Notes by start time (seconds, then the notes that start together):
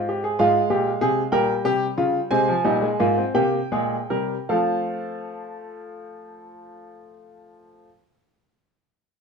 Already playing: G#2 C4 C5
0.09 G4
0.24 G#4
0.39 G#2 G#3 F4 F5
0.70 A#2 G4
1.01 C3 G#4
1.32 A#2 G3 A#4 G5
1.65 C3 G4
1.97 C#3 F4
2.31 C3 G#3 C4 G#5
2.48 F3
2.64 A#2 G3 D#4
2.82 G#3
3.00 G#2 A#3 F4
3.17 C4
3.34 C3 A#3 G4 G5
3.72 A#2 G#3 G#4
4.10 C3 G3 A#4
4.49 F3 A3 C4 F4 A4 F5